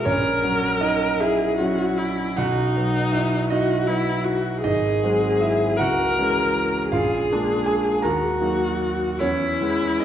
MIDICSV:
0, 0, Header, 1, 3, 480
1, 0, Start_track
1, 0, Key_signature, 5, "major"
1, 0, Tempo, 774194
1, 29, Time_signature, 6, 3, 24, 8
1, 1950, Tempo, 752823
1, 5310, Tempo, 796813
1, 6294, End_track
2, 0, Start_track
2, 0, Title_t, "Viola"
2, 0, Program_c, 0, 41
2, 31, Note_on_c, 0, 70, 56
2, 746, Note_on_c, 0, 68, 49
2, 755, Note_off_c, 0, 70, 0
2, 974, Note_off_c, 0, 68, 0
2, 978, Note_on_c, 0, 66, 50
2, 1226, Note_on_c, 0, 64, 45
2, 1236, Note_off_c, 0, 66, 0
2, 1462, Note_on_c, 0, 63, 53
2, 1471, Note_off_c, 0, 64, 0
2, 2171, Note_off_c, 0, 63, 0
2, 2175, Note_on_c, 0, 66, 51
2, 2414, Note_on_c, 0, 64, 52
2, 2423, Note_off_c, 0, 66, 0
2, 2650, Note_on_c, 0, 66, 47
2, 2660, Note_off_c, 0, 64, 0
2, 2888, Note_off_c, 0, 66, 0
2, 2891, Note_on_c, 0, 68, 58
2, 3624, Note_on_c, 0, 70, 54
2, 3634, Note_off_c, 0, 68, 0
2, 4345, Note_off_c, 0, 70, 0
2, 4349, Note_on_c, 0, 68, 53
2, 5070, Note_on_c, 0, 66, 53
2, 5080, Note_off_c, 0, 68, 0
2, 5780, Note_on_c, 0, 64, 54
2, 5789, Note_off_c, 0, 66, 0
2, 6294, Note_off_c, 0, 64, 0
2, 6294, End_track
3, 0, Start_track
3, 0, Title_t, "Grand piano"
3, 0, Program_c, 1, 0
3, 0, Control_c, 1, 64, 127
3, 30, Note_on_c, 1, 73, 61
3, 37, Note_on_c, 1, 61, 47
3, 39, Control_c, 1, 64, 0
3, 39, Note_on_c, 1, 34, 42
3, 146, Control_c, 1, 64, 127
3, 263, Note_off_c, 1, 34, 0
3, 267, Note_off_c, 1, 61, 0
3, 271, Note_on_c, 1, 54, 31
3, 276, Note_on_c, 1, 61, 35
3, 502, Note_on_c, 1, 75, 70
3, 504, Note_off_c, 1, 73, 0
3, 510, Note_on_c, 1, 63, 48
3, 732, Note_off_c, 1, 63, 0
3, 745, Note_off_c, 1, 75, 0
3, 746, Note_on_c, 1, 76, 65
3, 755, Note_on_c, 1, 64, 45
3, 966, Note_off_c, 1, 54, 0
3, 969, Note_off_c, 1, 61, 0
3, 988, Note_on_c, 1, 54, 31
3, 993, Note_on_c, 1, 61, 34
3, 1452, Note_off_c, 1, 54, 0
3, 1454, Note_off_c, 1, 61, 0
3, 1457, Note_off_c, 1, 64, 0
3, 1470, Note_on_c, 1, 78, 69
3, 1476, Note_on_c, 1, 35, 45
3, 1477, Note_off_c, 1, 76, 0
3, 1480, Note_on_c, 1, 66, 56
3, 1489, Control_c, 1, 64, 0
3, 1575, Control_c, 1, 64, 127
3, 1710, Note_off_c, 1, 35, 0
3, 1713, Note_on_c, 1, 54, 34
3, 1717, Note_on_c, 1, 59, 37
3, 1927, Note_off_c, 1, 66, 0
3, 1935, Note_on_c, 1, 76, 69
3, 1940, Note_on_c, 1, 64, 49
3, 1947, Note_off_c, 1, 78, 0
3, 2165, Note_off_c, 1, 64, 0
3, 2178, Note_on_c, 1, 75, 70
3, 2180, Note_off_c, 1, 76, 0
3, 2189, Note_on_c, 1, 63, 55
3, 2401, Note_off_c, 1, 54, 0
3, 2403, Note_off_c, 1, 59, 0
3, 2422, Note_on_c, 1, 54, 29
3, 2425, Note_on_c, 1, 59, 37
3, 2883, Note_off_c, 1, 54, 0
3, 2885, Note_off_c, 1, 59, 0
3, 2887, Note_off_c, 1, 63, 0
3, 2893, Note_off_c, 1, 75, 0
3, 2902, Note_on_c, 1, 75, 70
3, 2905, Note_on_c, 1, 63, 53
3, 2906, Note_on_c, 1, 32, 42
3, 2923, Control_c, 1, 64, 0
3, 3026, Control_c, 1, 64, 127
3, 3144, Note_off_c, 1, 32, 0
3, 3155, Note_on_c, 1, 54, 33
3, 3160, Note_on_c, 1, 56, 35
3, 3161, Note_on_c, 1, 60, 38
3, 3370, Note_off_c, 1, 63, 0
3, 3392, Note_on_c, 1, 76, 65
3, 3394, Note_off_c, 1, 75, 0
3, 3401, Note_on_c, 1, 64, 51
3, 3614, Note_off_c, 1, 54, 0
3, 3617, Note_off_c, 1, 56, 0
3, 3618, Note_off_c, 1, 60, 0
3, 3624, Note_off_c, 1, 64, 0
3, 3635, Note_on_c, 1, 78, 68
3, 3636, Note_off_c, 1, 76, 0
3, 3645, Note_on_c, 1, 66, 58
3, 3646, Note_on_c, 1, 37, 43
3, 3650, Control_c, 1, 64, 0
3, 3736, Control_c, 1, 64, 127
3, 3874, Note_off_c, 1, 37, 0
3, 3884, Note_on_c, 1, 52, 33
3, 3889, Note_on_c, 1, 61, 32
3, 3890, Note_on_c, 1, 56, 35
3, 4344, Note_off_c, 1, 52, 0
3, 4344, Note_off_c, 1, 66, 0
3, 4346, Note_off_c, 1, 61, 0
3, 4347, Note_off_c, 1, 56, 0
3, 4356, Note_on_c, 1, 77, 70
3, 4361, Note_on_c, 1, 34, 39
3, 4364, Note_off_c, 1, 78, 0
3, 4365, Note_on_c, 1, 65, 53
3, 4376, Control_c, 1, 64, 0
3, 4477, Control_c, 1, 64, 127
3, 4594, Note_off_c, 1, 34, 0
3, 4614, Note_on_c, 1, 56, 37
3, 4614, Note_on_c, 1, 58, 34
3, 4616, Note_on_c, 1, 62, 38
3, 4811, Note_off_c, 1, 65, 0
3, 4830, Note_on_c, 1, 80, 70
3, 4832, Note_off_c, 1, 77, 0
3, 4839, Note_on_c, 1, 68, 54
3, 5050, Note_off_c, 1, 56, 0
3, 5051, Note_off_c, 1, 58, 0
3, 5052, Note_off_c, 1, 62, 0
3, 5056, Note_off_c, 1, 68, 0
3, 5061, Note_on_c, 1, 82, 68
3, 5068, Note_off_c, 1, 80, 0
3, 5069, Note_on_c, 1, 39, 43
3, 5069, Note_on_c, 1, 70, 50
3, 5081, Control_c, 1, 64, 0
3, 5185, Control_c, 1, 64, 127
3, 5303, Note_off_c, 1, 39, 0
3, 5303, Note_on_c, 1, 54, 30
3, 5310, Note_on_c, 1, 58, 30
3, 5311, Note_on_c, 1, 63, 32
3, 5760, Note_off_c, 1, 54, 0
3, 5763, Note_off_c, 1, 70, 0
3, 5764, Note_off_c, 1, 58, 0
3, 5764, Note_off_c, 1, 63, 0
3, 5783, Note_off_c, 1, 82, 0
3, 5785, Note_on_c, 1, 73, 68
3, 5787, Note_on_c, 1, 61, 54
3, 5790, Note_on_c, 1, 40, 43
3, 5800, Control_c, 1, 64, 0
3, 5904, Control_c, 1, 64, 127
3, 6022, Note_off_c, 1, 40, 0
3, 6031, Note_on_c, 1, 52, 31
3, 6033, Note_on_c, 1, 56, 34
3, 6037, Note_on_c, 1, 59, 40
3, 6246, Note_off_c, 1, 61, 0
3, 6265, Note_on_c, 1, 75, 59
3, 6269, Note_off_c, 1, 73, 0
3, 6273, Note_on_c, 1, 63, 43
3, 6294, Note_off_c, 1, 52, 0
3, 6294, Note_off_c, 1, 56, 0
3, 6294, Note_off_c, 1, 59, 0
3, 6294, Note_off_c, 1, 63, 0
3, 6294, Note_off_c, 1, 75, 0
3, 6294, End_track
0, 0, End_of_file